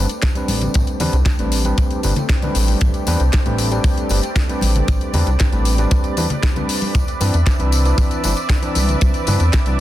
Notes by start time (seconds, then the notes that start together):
Already playing: A3 C4 G4 B4 D5
0.09 closed hi-hat, tambourine
0.22 kick, snare, closed hi-hat, tambourine
0.35 G3 C4 D4 B4, closed hi-hat, tambourine
0.48 A1, open hi-hat, tambourine, high conga
0.61 closed hi-hat, tambourine, low conga
0.74 A1, kick, closed hi-hat, tambourine
0.87 closed hi-hat, tambourine
1.00 E2 G3 C4 D4 B4, open hi-hat, tambourine, low conga
1.13 C2, closed hi-hat, tambourine
1.26 kick, snare, closed hi-hat, tambourine
1.39 A1 G3 C4 D4 B4, closed hi-hat, tambourine
1.52 open hi-hat, tambourine
1.65 G3 C4 D4 B4, closed hi-hat, tambourine, high conga
1.78 kick, closed hi-hat, tambourine
1.91 closed hi-hat, tambourine
2.03 G1 G3 C4 D4 B4, open hi-hat, tambourine
2.16 closed hi-hat, tambourine, low conga
2.29 kick, snare, closed hi-hat, tambourine
2.42 G3 C4 D4 B4, closed hi-hat, tambourine, high conga, low conga
2.55 A1, open hi-hat, tambourine
2.68 open hi-hat, tambourine, high conga
2.81 A1, kick, closed hi-hat, tambourine
2.94 closed hi-hat, tambourine
3.07 E2 G3 C4 D4 B4, open hi-hat, tambourine
3.20 C2, closed hi-hat, tambourine
3.33 kick, snare, closed hi-hat, tambourine
3.46 A1 G3 C4 D4 B4, closed hi-hat, tambourine
3.58 open hi-hat, tambourine
3.71 G3 C4 D4 B4, closed hi-hat, tambourine
3.84 kick, open hi-hat, tambourine
3.98 closed hi-hat, tambourine
4.09 G1 G3 C4 D4 B4, open hi-hat, tambourine
4.23 closed hi-hat, tambourine
4.36 kick, snare, closed hi-hat, tambourine
4.48 G3 C4 D4 B4, closed hi-hat, tambourine
4.61 A1, open hi-hat, tambourine, high conga
4.75 closed hi-hat, tambourine, low conga
4.88 A1, kick, closed hi-hat, tambourine
5.01 closed hi-hat, tambourine
5.13 E2 G3 C4 D4 B4, open hi-hat, tambourine, low conga
5.27 C2, closed hi-hat, tambourine
5.40 kick, snare, closed hi-hat, tambourine
5.52 A1 G3 C4 D4 B4, closed hi-hat, tambourine
5.65 open hi-hat, tambourine
5.78 G3 C4 D4 B4, closed hi-hat, tambourine, high conga
5.91 kick, closed hi-hat, tambourine
6.04 closed hi-hat, tambourine
6.17 E2 G3 C4 D4 B4, open hi-hat, tambourine
6.30 closed hi-hat, tambourine, low conga
6.43 kick, snare, closed hi-hat, tambourine
6.56 G3 C4 D4 B4, closed hi-hat, tambourine, high conga, low conga
6.69 open hi-hat, tambourine
6.82 open hi-hat, tambourine, high conga
6.95 C2 C4 E5, kick, closed hi-hat, tambourine
7.07 closed hi-hat, tambourine
7.20 G2 E3 C4 D4 B4, open hi-hat, tambourine
7.33 E2, closed hi-hat, tambourine
7.46 kick, snare, closed hi-hat, tambourine
7.58 C2 E3 C4 D4 B4, closed hi-hat, tambourine
7.72 open hi-hat, tambourine
7.85 E3 C4 D4 B4, closed hi-hat, tambourine
7.98 kick, open hi-hat, tambourine
8.11 closed hi-hat, tambourine
8.24 G1 E3 C4 D4 B4, open hi-hat, tambourine
8.37 closed hi-hat, tambourine
8.49 kick, snare, closed hi-hat, tambourine
8.62 E3 C4 D4 B4, closed hi-hat, tambourine
8.75 C2, open hi-hat, tambourine, high conga
8.89 closed hi-hat, tambourine, low conga
9.01 C2, kick, closed hi-hat, tambourine
9.14 closed hi-hat, tambourine
9.27 G2 E3 C4 D4 B4, open hi-hat, tambourine, low conga
9.40 E2, closed hi-hat, tambourine
9.53 kick, snare, closed hi-hat, tambourine
9.66 C2 E3 C4 D4 B4, closed hi-hat, tambourine